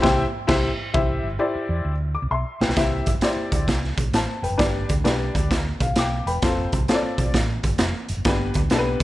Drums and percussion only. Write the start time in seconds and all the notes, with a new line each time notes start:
0.04 kick, snare
0.48 kick, snare, crash
0.94 kick
2.61 snare
2.69 snare
2.76 kick, snare, closed hi-hat
3.06 kick, closed hi-hat
3.21 snare, closed hi-hat
3.52 kick, closed hi-hat
3.68 kick, snare, closed hi-hat
3.84 snare
3.97 kick, closed hi-hat
4.14 snare, closed hi-hat
4.44 closed hi-hat
4.59 kick, snare, closed hi-hat
4.89 kick, closed hi-hat
5.05 snare, closed hi-hat
5.35 kick, closed hi-hat
5.51 kick, snare, closed hi-hat
5.80 kick, closed hi-hat
5.96 snare, closed hi-hat
6.27 closed hi-hat
6.42 kick, snare, closed hi-hat
6.72 kick, closed hi-hat
6.88 snare, closed hi-hat
7.18 kick, closed hi-hat
7.34 kick, snare, closed hi-hat
7.63 kick, closed hi-hat
7.78 snare, closed hi-hat
8.09 closed hi-hat
8.25 kick, snare, closed hi-hat
8.54 kick, closed hi-hat
8.70 snare, closed hi-hat